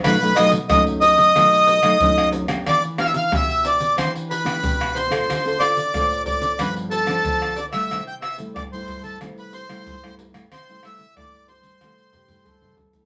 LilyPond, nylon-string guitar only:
\new Staff \with { instrumentName = "Nylon-string guitar" } { \time 4/4 \key c \major \tempo 4 = 92 << { <fis a dis'>16 <fis a dis'>16 <fis a dis'>16 r16 <fis a dis'>8. r16 <fis a dis'>8. <fis a dis'>16 <fis a dis'>8. <b d' g'>16~ | <b d' g'>16 r16 <b d' g'>16 r16 <b d' g'>4 <d' g'>8 r16 <b d' g'>16 <b d' g'>8. <c' f' a'>16~ | <c' f' a'>16 <c' f' a'>16 <c' f' a'>16 r16 <c' f' a'>4 <f b d'>8. <f b d'>16 <f b d'>8 r16 <g a e'>16~ | <g a e'>16 r8 <g a e'>8 <g a e'>8. <g a e'>8. <g a e'>8 <g a e'>8 <g a e'>16 |
r16 <g a e'>16 <g a e'>16 r16 <g a e'>8. r16 <g a e'>8. <g a e'>4 <g a e'>16 | } \\ { b,4 fis,4 b,4 fis,4 | e4 b,4 e4 b,4 | d4 a,4 g,4 d4 | c4 g,4 c4 g,4 |
c4 g,4 c4 g,4 | } >> }